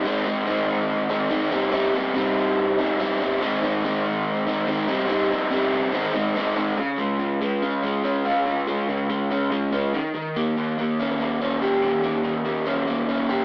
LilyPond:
\new Staff \with { instrumentName = "Overdriven electric guitar" } { \time 4/4 \key des \lydian \tempo 4 = 143 <aes, ees aes c' ees'>8 <aes c' ees'>8 <ees aes c' ees'>4. <aes c' ees'>8 <aes, ees aes c' ees'>8 <c g c' ees'>8 | <c g c' ees'>8 <g c' ees'>8 <c g c' ees'>4. <g c' ees'>8 <c g c' ees'>8 <g c' ees'>8 | <aes, ees aes c' ees'>8 <aes c' ees'>8 <ees aes c' ees'>4. <aes c' ees'>8 <aes, ees aes c' ees'>8 <c g c' ees'>8 | <c g c' ees'>8 <g c' ees'>8 <c g c' ees'>4 <aes, ees aes c' ees'>8 <aes c' ees'>8 <aes, ees aes c' ees'>8 <aes c' ees'>8 |
des8 aes8 des8 aes8 des'8 aes8 des'8 f'8 | des8 aes8 des8 aes8 des'8 aes8 des'8 ees8 | ees8 bes8 ees8 bes8 des'8 bes8 des'8 g'8 | ees8 bes8 ees8 bes8 des'8 bes8 des'8 g'8 | }